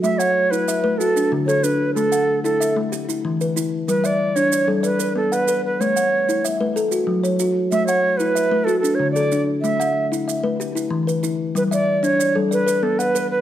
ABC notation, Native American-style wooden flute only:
X:1
M:12/8
L:1/8
Q:3/8=125
K:Amix
V:1 name="Native American-style wooden flute"
e c2 B3 A2 z c B2 | A3 A2 z6 z | B d2 c2 z B2 A B2 B | c4 z8 |
e c2 B3 A A c d2 z | e3 z8 z | B d2 c2 z B2 A B2 B |]